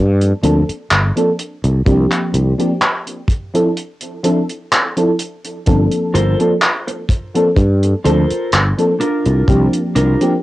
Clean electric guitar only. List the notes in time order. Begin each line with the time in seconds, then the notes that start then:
6.14 F4 A4 A#4 C5
6.87 muted clean electric guitar stroke
7.10 muted clean electric guitar stroke
8.05 F4 A4 A#4 C5
9.00 D4 F4 A#4
9.95 D4 F4 A#4